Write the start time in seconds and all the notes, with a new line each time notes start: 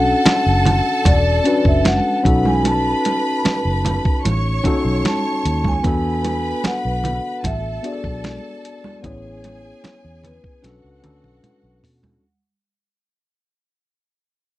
Already playing: B1 C#4 D4 F#4 A4 F#5 A5
0.26 muted fingered electric bass stroke, snare, closed hi-hat, high conga
0.46 F#1
0.65 closed hi-hat, muted conga, low conga
1.05 E1 D5, kick, closed hi-hat, muted conga
1.44 C#4 D4 F#4 B4, closed hi-hat
1.65 F#1 E5, kick
1.85 F#5, snare, closed hi-hat, high conga
2.23 B1 C#4 D#4 F#4 A4 B4 B5, kick, closed hi-hat
2.45 G#5, high conga
2.65 A5, closed hi-hat, muted conga
3.05 closed hi-hat, muted conga
3.45 muted fingered electric bass stroke, snare, closed hi-hat, high conga
3.65 F#1
3.85 closed hi-hat, muted conga, low conga
4.05 kick
4.25 A1 C#5 C#6, closed hi-hat, muted conga
4.64 C#4 D#4 F#4 A4, kick, closed hi-hat, low conga
4.85 B1
5.05 A5, snare, closed hi-hat, high conga
5.45 D#2, closed hi-hat
5.64 G#5, kick, high conga
5.83 E2 B3 D4 F#4 A4 B4 B5, kick, closed hi-hat, muted conga
6.25 closed hi-hat, muted conga
6.64 F#5, muted fingered electric bass stroke, snare, closed hi-hat, high conga
6.85 B1
7.04 closed hi-hat, low conga
7.44 A1 A4 E5 A5, kick, closed hi-hat, muted conga
7.83 B3 D4 F#4 G#4 D5, closed hi-hat
7.92 A4
8.04 B1, kick
8.24 snare, closed hi-hat, high conga
8.65 closed hi-hat
8.84 high conga
9.02 A1 B3 C#4 E4 G#4 C#5 G#5, kick, closed hi-hat, muted conga
9.44 closed hi-hat, muted conga
9.84 muted fingered electric bass stroke, snare, closed hi-hat, high conga
10.05 E2
10.24 B4, closed hi-hat, low conga
10.44 kick
10.62 B1 C#4 D4 F#4 A4 F#5, snare, closed hi-hat, muted conga
10.84 C#2
11.02 D2 C#4 D4 F#4 A4, closed hi-hat, high tom, low conga
11.24 B1, high tom
11.43 closed hi-hat, mid tom, high conga
11.63 B1
11.83 B2, floor tom, open hi-hat
12.03 floor tom, high conga